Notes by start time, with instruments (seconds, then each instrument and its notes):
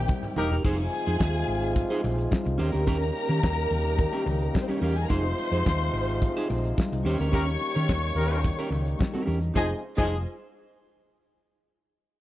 Already playing: french horn section C3 G3 A#3 D#4 G4, string section G4 G5
0.08 muted clean electric guitar stroke, kick, mid tom, high conga, shaker
0.23 muted clean electric guitar stroke, mid tom, high conga, shaker
0.36 fingered electric bass E1, horn section A#3 D#4 G4 A#4, clean electric guitar D#4 G4 A#4, floor tom
0.51 clean electric guitar D#4 G4 A#4, floor tom, shaker
0.64 fingered electric bass F1, french horn section C3 F3 G#3 D#4 F4, clean electric guitar D#4 G#4 C5, string section G#4 G#5, kick, crash, muted conga, shaker
0.79 muted clean electric guitar stroke, closed hi-hat, shaker
0.93 muted clean electric guitar stroke, open hi-hat, muted conga
1.06 fingered electric bass F2, clean electric guitar D#4 G#4 C5, closed hi-hat, shaker
1.19 fingered electric bass D#2, muted clean electric guitar stroke, kick, snare, closed hi-hat, high conga, shaker
1.34 muted clean electric guitar stroke, closed hi-hat, shaker
1.47 fingered electric bass G#1, open hi-hat
1.62 muted clean electric guitar stroke, closed hi-hat, shaker
1.75 muted clean electric guitar stroke, kick, closed hi-hat, muted conga, shaker
1.90 clean electric guitar D#4 G#4 C5, closed hi-hat, shaker
2.03 fingered electric bass A#1, muted clean electric guitar stroke, open hi-hat, muted conga, shaker
2.17 muted clean electric guitar stroke, closed hi-hat, shaker
2.31 muted clean electric guitar stroke, kick, snare, closed hi-hat, high conga, shaker
2.45 fingered electric bass C2, muted clean electric guitar stroke, closed hi-hat, high conga, shaker
2.58 fingered electric bass D#2, french horn section C#3 G3 A#3 G4, clean electric guitar C#4 G4 C5, string section A#4 A#5, open hi-hat, shaker
2.72 fingered electric bass D2, clean electric guitar C#4 G4 A#4, closed hi-hat, shaker
2.87 fingered electric bass D#2, clean electric guitar C#4 G4 A#4, kick, closed hi-hat, muted conga, shaker
3.00 muted clean electric guitar stroke, closed hi-hat, shaker
3.13 muted clean electric guitar stroke, open hi-hat
3.28 fingered electric bass D#3, clean electric guitar C#4 G4 A#4, closed hi-hat, shaker
3.43 fingered electric bass D#2, kick, snare, closed hi-hat, high conga, shaker
3.56 muted clean electric guitar stroke, closed hi-hat, shaker
3.70 fingered electric bass D#2, open hi-hat, low conga
3.84 muted clean electric guitar stroke, closed hi-hat, shaker
3.97 muted clean electric guitar stroke, kick, closed hi-hat, muted conga, low conga, shaker
4.13 clean electric guitar C#4 G4 A#4, closed hi-hat, shaker
4.26 fingered electric bass C#2, muted clean electric guitar stroke, open hi-hat, muted conga, low conga, shaker
4.41 muted clean electric guitar stroke, closed hi-hat, shaker
4.54 muted clean electric guitar stroke, kick, snare, closed hi-hat, high conga, shaker
4.62 string section C4 C5
4.68 string section C#4 C#5, clean electric guitar C#4 G4 A#4, closed hi-hat, high conga, shaker
4.78 fingered electric bass E2, string section D#4 D#5
4.82 clean electric guitar C#4 G4 A#4, string section F4 F5, open hi-hat, shaker
4.90 string section G4 G5
4.96 string section G#4 G#5, muted clean electric guitar stroke, closed hi-hat, shaker
5.04 string section A#4 A#5
5.10 fingered electric bass F1, french horn section C3 F3 G#3 F4, clean electric guitar D#4 G#4 C5, string section C5 C6, kick, closed hi-hat, muted conga, shaker
5.25 muted clean electric guitar stroke, closed hi-hat, shaker
5.38 muted clean electric guitar stroke, open hi-hat, muted conga
5.52 fingered electric bass F2, clean electric guitar D#4 G#4 C5, closed hi-hat, shaker
5.65 fingered electric bass D#2, muted clean electric guitar stroke, kick, snare, closed hi-hat, high conga, shaker
5.81 muted clean electric guitar stroke, closed hi-hat, shaker
5.93 fingered electric bass G#1, open hi-hat
6.09 muted clean electric guitar stroke, closed hi-hat, shaker
6.22 muted clean electric guitar stroke, kick, closed hi-hat, muted conga, shaker
6.37 clean electric guitar D#4 G#4 C5, closed hi-hat, shaker
6.49 fingered electric bass A#1, muted clean electric guitar stroke, open hi-hat, muted conga, shaker
6.64 muted clean electric guitar stroke, closed hi-hat, shaker
6.78 muted clean electric guitar stroke, kick, snare, closed hi-hat, high conga, shaker
6.92 fingered electric bass C2, muted clean electric guitar stroke, closed hi-hat, high conga, shaker
7.05 fingered electric bass D#2, french horn section C#3 G3 A#3 G4, clean electric guitar C#4 G4 C5, string section C#5 C#6, open hi-hat, shaker
7.20 fingered electric bass D2, clean electric guitar C#4 G4 A#4, closed hi-hat, shaker
7.32 fingered electric bass D#2, horn section A#3 D#4 G4 A#4, clean electric guitar C#4 G4 A#4, kick, closed hi-hat, muted conga, shaker
7.48 muted clean electric guitar stroke, closed hi-hat, shaker
7.61 muted clean electric guitar stroke, open hi-hat
7.75 fingered electric bass D#3, clean electric guitar C#4 G4 A#4, closed hi-hat, shaker
7.88 fingered electric bass D#2, muted clean electric guitar stroke, kick, snare, closed hi-hat, high conga, shaker
8.03 muted clean electric guitar stroke, closed hi-hat, shaker
8.15 fingered electric bass D#2, horn section A#3 D#4 G4 A#4, open hi-hat, low conga
8.31 muted clean electric guitar stroke, closed hi-hat, shaker
8.44 muted clean electric guitar stroke, kick, closed hi-hat, muted conga, low conga, shaker
8.59 clean electric guitar C#4 G4 A#4, closed hi-hat, shaker
8.70 fingered electric bass C#2, muted clean electric guitar stroke, open hi-hat, muted conga, low conga, shaker
8.86 muted clean electric guitar stroke, closed hi-hat, shaker
8.99 muted clean electric guitar stroke, kick, snare, closed hi-hat, high conga, shaker
9.14 clean electric guitar C#4 G4 A#4, closed hi-hat, high conga, shaker
9.25 fingered electric bass E2, clean electric guitar C#4 G4 A#4, open hi-hat, shaker
9.41 muted clean electric guitar stroke, closed hi-hat, shaker
9.54 fingered electric bass F1, french horn section C3 F3 G#3 D#4 G#4, horn section F3 G#3 D#4 G#4, clean electric guitar D#4 G#4 C5, string section F4 D#5 G#5, kick, snare, muted conga, shaker
9.97 fingered electric bass F1, horn section F3 G#3 D#4 G#4, clean electric guitar D#4 G#4 C5, string section F4 D#5 G#5, kick, crash, muted conga, shaker